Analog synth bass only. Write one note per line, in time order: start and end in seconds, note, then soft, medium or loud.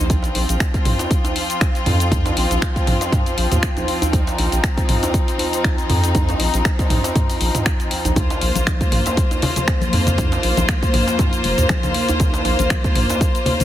0.00 0.29 A#1 medium
0.35 0.44 A#1 loud
0.49 0.56 A#1 loud
0.86 0.95 A#1 medium
1.86 2.31 F2 loud
2.37 2.46 A#1 loud
2.51 2.58 A#1 loud
2.87 2.96 A#1 medium
3.38 3.47 A#1 loud
3.52 3.59 D#2 loud
3.77 3.84 A#1 loud
4.39 4.48 A#1 loud
4.52 4.60 A#1 loud
4.89 4.98 A#1 medium
5.90 6.34 F2 loud
6.40 6.49 A#1 loud
6.54 6.61 A#1 loud
6.91 7.00 A#1 medium
7.41 7.50 A#1 medium
8.05 8.13 A#1 medium
8.42 8.51 A#1 loud
8.56 8.63 A#1 loud
8.92 9.01 A#1 medium
9.93 10.37 F2 loud
10.44 10.53 A#1 loud
10.57 10.65 A#1 loud
10.94 11.03 A#1 medium
11.44 11.54 F1 loud
11.58 11.66 D#2 medium
11.84 11.91 A#1 loud
12.45 12.54 A#1 loud
12.59 12.67 A#1 loud
12.96 13.05 A#1 medium